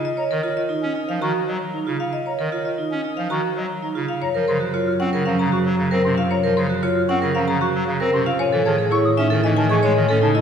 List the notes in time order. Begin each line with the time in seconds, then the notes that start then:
0.05 D#5
0.17 C#5 A#5
0.30 D#3 A#4
0.43 F4
0.57 D#5
0.69 D#4
0.83 C#4
0.95 D#4
1.09 F3 F5
1.21 D#3 F#4 A#5 C#6
1.47 F#3 D#5
1.74 D#4 A#5
1.87 C#3 F4
2.00 F5
2.13 D#5
2.26 C#5 A#5
2.39 D#3 A#4
2.52 F4
2.65 D#5
2.78 D#4
2.91 C#4
3.04 D#4
3.17 F3 F5
3.30 D#3 F#4 A#5 C#6
3.56 F#3 D#5
3.82 D#4 A#5
3.95 C#3 F4
4.08 F5
4.21 F#2 C#5 A#5
4.35 F3 A#4
4.47 C#3 A#4 C5 C6
4.60 F#4
4.74 F4 C#5
4.87 F6
5.00 C4 C#4 F#5
5.13 C#3 A#4
5.26 F3 C#4 F5 A#5
5.39 C#3 A#5
5.52 F#4 C#6
5.66 F#3
5.78 C#3 F5
5.91 C4 A#4 C5
6.04 C3 C#4 C6
6.17 F4 F5
6.30 C#5 A#5
6.43 F3 A#4
6.56 C#3 A#4 C5 C6
6.70 F#4
6.83 F4 C#5
6.96 F6
7.09 C4 C#4 F#5
7.22 C#3 A#4
7.35 F3 C#4 F5 A#5
7.48 C#3 A#5
7.61 F#4 C#6
7.74 F#3
7.87 C#3 F5
8.00 C4 A#4 C5
8.13 C3 C#4 C6
8.26 F4 F5
8.39 A2 C#5 G#5
8.52 E3 A4
8.65 D#3 G#4 C#5 A5
8.78 G#4
8.91 E4 C#5 C#6
9.04 D#6
9.17 C#4 D#4 E5
9.30 D#3 A4
9.44 E3 D#4 D#5 G#5
9.57 D#3 G#5 A5
9.69 E3 G#4 C#6
9.83 G#3 C#5
9.96 D#3 D#5
10.08 C#4 A4
10.22 C#3 D#4 A5
10.35 E4 D#5